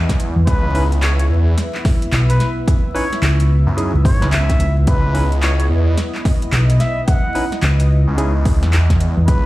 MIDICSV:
0, 0, Header, 1, 7, 480
1, 0, Start_track
1, 0, Key_signature, 4, "minor"
1, 0, Tempo, 550459
1, 409, Time_signature, 4, 2, 24, 8
1, 8248, End_track
2, 0, Start_track
2, 0, Title_t, "Analog synth pad"
2, 0, Program_c, 0, 89
2, 0, Note_on_c, 0, 59, 79
2, 0, Note_on_c, 0, 64, 74
2, 0, Note_on_c, 0, 75, 87
2, 405, Note_off_c, 0, 75, 0
2, 412, Note_on_c, 0, 76, 83
2, 4245, Note_off_c, 0, 76, 0
2, 4250, Note_on_c, 0, 75, 89
2, 8082, Note_on_c, 0, 71, 90
2, 8085, Note_off_c, 0, 75, 0
2, 8248, Note_off_c, 0, 59, 0
2, 8248, Note_off_c, 0, 64, 0
2, 8248, Note_off_c, 0, 71, 0
2, 8248, End_track
3, 0, Start_track
3, 0, Title_t, "Trumpet"
3, 0, Program_c, 1, 56
3, 401, Note_on_c, 1, 71, 99
3, 794, Note_off_c, 1, 71, 0
3, 890, Note_on_c, 1, 73, 90
3, 985, Note_off_c, 1, 73, 0
3, 1035, Note_on_c, 1, 73, 83
3, 1095, Note_off_c, 1, 73, 0
3, 2003, Note_on_c, 1, 71, 96
3, 2170, Note_off_c, 1, 71, 0
3, 2577, Note_on_c, 1, 73, 97
3, 2770, Note_off_c, 1, 73, 0
3, 3527, Note_on_c, 1, 73, 95
3, 3725, Note_off_c, 1, 73, 0
3, 3769, Note_on_c, 1, 76, 100
3, 4158, Note_off_c, 1, 76, 0
3, 4255, Note_on_c, 1, 71, 96
3, 4641, Note_off_c, 1, 71, 0
3, 4726, Note_on_c, 1, 73, 96
3, 4823, Note_off_c, 1, 73, 0
3, 4868, Note_on_c, 1, 73, 85
3, 4931, Note_off_c, 1, 73, 0
3, 5930, Note_on_c, 1, 76, 98
3, 6126, Note_off_c, 1, 76, 0
3, 6170, Note_on_c, 1, 78, 99
3, 6650, Note_off_c, 1, 78, 0
3, 8084, Note_on_c, 1, 71, 99
3, 8248, Note_off_c, 1, 71, 0
3, 8248, End_track
4, 0, Start_track
4, 0, Title_t, "Tine electric piano"
4, 0, Program_c, 2, 4
4, 650, Note_on_c, 2, 64, 78
4, 651, Note_on_c, 2, 61, 85
4, 651, Note_on_c, 2, 71, 95
4, 652, Note_on_c, 2, 63, 80
4, 726, Note_off_c, 2, 61, 0
4, 726, Note_off_c, 2, 64, 0
4, 726, Note_off_c, 2, 71, 0
4, 727, Note_off_c, 2, 63, 0
4, 2569, Note_on_c, 2, 71, 99
4, 2570, Note_on_c, 2, 64, 79
4, 2571, Note_on_c, 2, 61, 84
4, 2571, Note_on_c, 2, 63, 77
4, 2645, Note_off_c, 2, 71, 0
4, 2646, Note_off_c, 2, 61, 0
4, 2646, Note_off_c, 2, 64, 0
4, 2647, Note_off_c, 2, 63, 0
4, 3286, Note_on_c, 2, 63, 67
4, 3287, Note_on_c, 2, 61, 73
4, 3287, Note_on_c, 2, 64, 72
4, 3287, Note_on_c, 2, 68, 83
4, 3410, Note_off_c, 2, 61, 0
4, 3410, Note_off_c, 2, 63, 0
4, 3410, Note_off_c, 2, 64, 0
4, 3410, Note_off_c, 2, 68, 0
4, 3674, Note_on_c, 2, 63, 74
4, 3674, Note_on_c, 2, 64, 69
4, 3675, Note_on_c, 2, 61, 78
4, 3676, Note_on_c, 2, 71, 86
4, 3722, Note_off_c, 2, 63, 0
4, 3723, Note_off_c, 2, 61, 0
4, 3723, Note_off_c, 2, 64, 0
4, 3723, Note_off_c, 2, 71, 0
4, 4486, Note_on_c, 2, 61, 85
4, 4486, Note_on_c, 2, 64, 78
4, 4486, Note_on_c, 2, 71, 94
4, 4487, Note_on_c, 2, 63, 78
4, 4564, Note_off_c, 2, 61, 0
4, 4564, Note_off_c, 2, 63, 0
4, 4564, Note_off_c, 2, 64, 0
4, 4564, Note_off_c, 2, 71, 0
4, 6408, Note_on_c, 2, 63, 84
4, 6408, Note_on_c, 2, 71, 97
4, 6409, Note_on_c, 2, 64, 79
4, 6410, Note_on_c, 2, 61, 86
4, 6485, Note_off_c, 2, 63, 0
4, 6485, Note_off_c, 2, 64, 0
4, 6485, Note_off_c, 2, 71, 0
4, 6486, Note_off_c, 2, 61, 0
4, 7128, Note_on_c, 2, 61, 79
4, 7129, Note_on_c, 2, 63, 70
4, 7129, Note_on_c, 2, 64, 70
4, 7130, Note_on_c, 2, 68, 86
4, 7251, Note_off_c, 2, 61, 0
4, 7251, Note_off_c, 2, 63, 0
4, 7251, Note_off_c, 2, 64, 0
4, 7252, Note_off_c, 2, 68, 0
4, 8248, End_track
5, 0, Start_track
5, 0, Title_t, "Detuned saw bass"
5, 0, Program_c, 3, 39
5, 0, Note_on_c, 3, 40, 93
5, 293, Note_off_c, 3, 40, 0
5, 413, Note_on_c, 3, 37, 100
5, 1116, Note_off_c, 3, 37, 0
5, 1129, Note_on_c, 3, 40, 101
5, 1355, Note_off_c, 3, 40, 0
5, 3196, Note_on_c, 3, 42, 101
5, 3413, Note_off_c, 3, 42, 0
5, 3676, Note_on_c, 3, 37, 102
5, 3994, Note_off_c, 3, 37, 0
5, 4250, Note_on_c, 3, 37, 100
5, 4955, Note_off_c, 3, 37, 0
5, 4968, Note_on_c, 3, 40, 101
5, 5194, Note_off_c, 3, 40, 0
5, 7039, Note_on_c, 3, 37, 98
5, 7495, Note_off_c, 3, 37, 0
5, 7520, Note_on_c, 3, 40, 94
5, 7975, Note_off_c, 3, 40, 0
5, 8093, Note_on_c, 3, 37, 100
5, 8248, Note_off_c, 3, 37, 0
5, 8248, End_track
6, 0, Start_track
6, 0, Title_t, "Fingered electric bass"
6, 0, Program_c, 4, 33
6, 316, Note_on_c, 4, 40, 103
6, 393, Note_off_c, 4, 40, 0
6, 1850, Note_on_c, 4, 35, 100
6, 2075, Note_off_c, 4, 35, 0
6, 2809, Note_on_c, 4, 37, 99
6, 3174, Note_off_c, 4, 37, 0
6, 3434, Note_on_c, 4, 37, 101
6, 3513, Note_off_c, 4, 37, 0
6, 3531, Note_on_c, 4, 32, 97
6, 3655, Note_off_c, 4, 32, 0
6, 4004, Note_on_c, 4, 37, 96
6, 4232, Note_off_c, 4, 37, 0
6, 5686, Note_on_c, 4, 35, 97
6, 5913, Note_off_c, 4, 35, 0
6, 6647, Note_on_c, 4, 37, 101
6, 7013, Note_off_c, 4, 37, 0
6, 8000, Note_on_c, 4, 40, 104
6, 8075, Note_off_c, 4, 40, 0
6, 8248, End_track
7, 0, Start_track
7, 0, Title_t, "Drums"
7, 81, Note_on_c, 9, 36, 69
7, 83, Note_on_c, 9, 38, 39
7, 83, Note_on_c, 9, 42, 66
7, 168, Note_off_c, 9, 36, 0
7, 170, Note_off_c, 9, 38, 0
7, 170, Note_off_c, 9, 42, 0
7, 172, Note_on_c, 9, 42, 68
7, 260, Note_off_c, 9, 42, 0
7, 412, Note_on_c, 9, 36, 127
7, 413, Note_on_c, 9, 42, 80
7, 499, Note_off_c, 9, 36, 0
7, 500, Note_off_c, 9, 42, 0
7, 653, Note_on_c, 9, 46, 60
7, 741, Note_off_c, 9, 46, 0
7, 803, Note_on_c, 9, 42, 38
7, 891, Note_off_c, 9, 42, 0
7, 894, Note_on_c, 9, 39, 127
7, 894, Note_on_c, 9, 42, 82
7, 981, Note_off_c, 9, 39, 0
7, 981, Note_off_c, 9, 42, 0
7, 1041, Note_on_c, 9, 42, 67
7, 1129, Note_off_c, 9, 42, 0
7, 1375, Note_on_c, 9, 38, 51
7, 1375, Note_on_c, 9, 42, 84
7, 1462, Note_off_c, 9, 38, 0
7, 1462, Note_off_c, 9, 42, 0
7, 1523, Note_on_c, 9, 39, 41
7, 1610, Note_off_c, 9, 39, 0
7, 1613, Note_on_c, 9, 36, 117
7, 1613, Note_on_c, 9, 38, 39
7, 1613, Note_on_c, 9, 46, 64
7, 1700, Note_off_c, 9, 38, 0
7, 1700, Note_off_c, 9, 46, 0
7, 1701, Note_off_c, 9, 36, 0
7, 1764, Note_on_c, 9, 42, 40
7, 1851, Note_off_c, 9, 42, 0
7, 1855, Note_on_c, 9, 39, 118
7, 1855, Note_on_c, 9, 42, 78
7, 1942, Note_off_c, 9, 39, 0
7, 1942, Note_off_c, 9, 42, 0
7, 2004, Note_on_c, 9, 42, 67
7, 2091, Note_off_c, 9, 42, 0
7, 2094, Note_on_c, 9, 38, 38
7, 2094, Note_on_c, 9, 42, 68
7, 2182, Note_off_c, 9, 38, 0
7, 2182, Note_off_c, 9, 42, 0
7, 2333, Note_on_c, 9, 36, 127
7, 2335, Note_on_c, 9, 42, 81
7, 2420, Note_off_c, 9, 36, 0
7, 2423, Note_off_c, 9, 42, 0
7, 2577, Note_on_c, 9, 46, 60
7, 2664, Note_off_c, 9, 46, 0
7, 2726, Note_on_c, 9, 38, 38
7, 2726, Note_on_c, 9, 42, 37
7, 2813, Note_off_c, 9, 38, 0
7, 2813, Note_off_c, 9, 42, 0
7, 2816, Note_on_c, 9, 39, 125
7, 2816, Note_on_c, 9, 42, 78
7, 2903, Note_off_c, 9, 39, 0
7, 2903, Note_off_c, 9, 42, 0
7, 2964, Note_on_c, 9, 42, 65
7, 3052, Note_off_c, 9, 42, 0
7, 3294, Note_on_c, 9, 42, 80
7, 3382, Note_off_c, 9, 42, 0
7, 3531, Note_on_c, 9, 36, 114
7, 3536, Note_on_c, 9, 46, 65
7, 3618, Note_off_c, 9, 36, 0
7, 3623, Note_off_c, 9, 46, 0
7, 3682, Note_on_c, 9, 38, 39
7, 3682, Note_on_c, 9, 42, 38
7, 3769, Note_off_c, 9, 38, 0
7, 3769, Note_off_c, 9, 42, 0
7, 3771, Note_on_c, 9, 39, 123
7, 3771, Note_on_c, 9, 42, 77
7, 3859, Note_off_c, 9, 39, 0
7, 3859, Note_off_c, 9, 42, 0
7, 3920, Note_on_c, 9, 36, 67
7, 3920, Note_on_c, 9, 38, 36
7, 3920, Note_on_c, 9, 42, 62
7, 4007, Note_off_c, 9, 36, 0
7, 4007, Note_off_c, 9, 38, 0
7, 4007, Note_off_c, 9, 42, 0
7, 4010, Note_on_c, 9, 42, 67
7, 4098, Note_off_c, 9, 42, 0
7, 4248, Note_on_c, 9, 42, 78
7, 4251, Note_on_c, 9, 36, 125
7, 4335, Note_off_c, 9, 42, 0
7, 4338, Note_off_c, 9, 36, 0
7, 4489, Note_on_c, 9, 46, 66
7, 4576, Note_off_c, 9, 46, 0
7, 4640, Note_on_c, 9, 42, 36
7, 4727, Note_off_c, 9, 42, 0
7, 4732, Note_on_c, 9, 39, 125
7, 4732, Note_on_c, 9, 42, 78
7, 4819, Note_off_c, 9, 39, 0
7, 4819, Note_off_c, 9, 42, 0
7, 4880, Note_on_c, 9, 42, 65
7, 4967, Note_off_c, 9, 42, 0
7, 5210, Note_on_c, 9, 38, 51
7, 5210, Note_on_c, 9, 42, 78
7, 5297, Note_off_c, 9, 38, 0
7, 5297, Note_off_c, 9, 42, 0
7, 5360, Note_on_c, 9, 39, 39
7, 5447, Note_off_c, 9, 39, 0
7, 5451, Note_on_c, 9, 38, 39
7, 5451, Note_on_c, 9, 46, 64
7, 5452, Note_on_c, 9, 36, 107
7, 5539, Note_off_c, 9, 36, 0
7, 5539, Note_off_c, 9, 38, 0
7, 5539, Note_off_c, 9, 46, 0
7, 5600, Note_on_c, 9, 42, 36
7, 5688, Note_off_c, 9, 42, 0
7, 5691, Note_on_c, 9, 39, 118
7, 5691, Note_on_c, 9, 42, 73
7, 5778, Note_off_c, 9, 39, 0
7, 5778, Note_off_c, 9, 42, 0
7, 5840, Note_on_c, 9, 42, 62
7, 5927, Note_off_c, 9, 42, 0
7, 5930, Note_on_c, 9, 38, 37
7, 5930, Note_on_c, 9, 42, 62
7, 6017, Note_off_c, 9, 38, 0
7, 6017, Note_off_c, 9, 42, 0
7, 6171, Note_on_c, 9, 42, 79
7, 6172, Note_on_c, 9, 36, 121
7, 6258, Note_off_c, 9, 42, 0
7, 6259, Note_off_c, 9, 36, 0
7, 6412, Note_on_c, 9, 46, 65
7, 6499, Note_off_c, 9, 46, 0
7, 6559, Note_on_c, 9, 38, 38
7, 6559, Note_on_c, 9, 42, 35
7, 6646, Note_off_c, 9, 38, 0
7, 6646, Note_off_c, 9, 42, 0
7, 6650, Note_on_c, 9, 39, 117
7, 6650, Note_on_c, 9, 42, 76
7, 6738, Note_off_c, 9, 39, 0
7, 6738, Note_off_c, 9, 42, 0
7, 6800, Note_on_c, 9, 42, 64
7, 6887, Note_off_c, 9, 42, 0
7, 7133, Note_on_c, 9, 42, 80
7, 7220, Note_off_c, 9, 42, 0
7, 7372, Note_on_c, 9, 36, 105
7, 7372, Note_on_c, 9, 46, 69
7, 7459, Note_off_c, 9, 46, 0
7, 7460, Note_off_c, 9, 36, 0
7, 7523, Note_on_c, 9, 38, 39
7, 7523, Note_on_c, 9, 42, 36
7, 7610, Note_off_c, 9, 38, 0
7, 7610, Note_off_c, 9, 42, 0
7, 7614, Note_on_c, 9, 39, 110
7, 7614, Note_on_c, 9, 42, 73
7, 7701, Note_off_c, 9, 39, 0
7, 7701, Note_off_c, 9, 42, 0
7, 7761, Note_on_c, 9, 36, 61
7, 7762, Note_on_c, 9, 38, 39
7, 7762, Note_on_c, 9, 42, 61
7, 7848, Note_off_c, 9, 36, 0
7, 7850, Note_off_c, 9, 38, 0
7, 7850, Note_off_c, 9, 42, 0
7, 7852, Note_on_c, 9, 42, 62
7, 7940, Note_off_c, 9, 42, 0
7, 8091, Note_on_c, 9, 42, 81
7, 8093, Note_on_c, 9, 36, 117
7, 8179, Note_off_c, 9, 42, 0
7, 8180, Note_off_c, 9, 36, 0
7, 8248, End_track
0, 0, End_of_file